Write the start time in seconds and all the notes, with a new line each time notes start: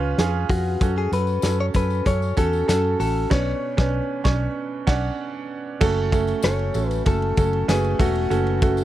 Already playing: C#2 C#4 F4 G#4 B4
0.18 F2 C#4 F4 G#4, snare, closed hi-hat
0.49 F2 C#4 F4 F#4 G#4, kick, open hi-hat
0.81 F#2 C#4 F#4 A4, kick, closed hi-hat, tambourine
0.98 G#4
1.12 F#2 C#4 F#4 A4 B4, closed hi-hat, tambourine
1.27 tambourine
1.42 F#2 C#4 F#4 A4, snare, closed hi-hat, tambourine
1.60 C#5
1.74 F#2 C#4 F#4 A4 B4, kick, closed hi-hat, tambourine
1.90 tambourine
2.05 F#2 C#4 F#4 A4 C#5, kick, closed hi-hat, tambourine
2.22 tambourine
2.37 E2 C#4 F#4 A4, kick, closed hi-hat, tambourine
2.53 tambourine
2.68 F#2 C#4 F#4 A4, snare, closed hi-hat, tambourine
3.00 A1 C#4 F#4 A4, open hi-hat, tambourine
3.30 B1 B2 C#4 D4 B4 C#5, kick, snare, crash
3.77 B1 C#4 D4 B4, kick, snare
4.24 B1 C#4 D4 C#6, kick, snare
4.87 B1 C#4 D4 F#5, kick, snare, crash
5.81 F#1 A3 C#4 F#4 A4, kick, crash, tambourine
6.12 A3 C#4 F#4 A4, kick, ride, tambourine
6.27 ride, tambourine
6.43 F#1 A3 C#4 F#4 A4 C#5, snare, ride, tambourine
6.59 ride
6.74 A1 A3 C#4 F#4 A4, ride, tambourine
6.88 B4, ride, tambourine
7.05 F#1 A3 C#4 F#4 A4, kick, ride, tambourine
7.22 ride
7.37 F#1 A3 C#4 F#4 A4, kick, ride, tambourine
7.53 ride
7.68 F#1 A3 C#4 F#4 G#4 B4, snare, ride, tambourine
7.84 ride
7.99 E1 A3 C#4 F#4 A4, kick, open hi-hat, ride, tambourine
8.15 ride
8.30 F#1 A3 C#4 F#4 A4, hi-hat pedal, ride, tambourine
8.47 ride
8.62 A3 C#4 F#4 A4, kick, ride, tambourine
8.77 ride, tambourine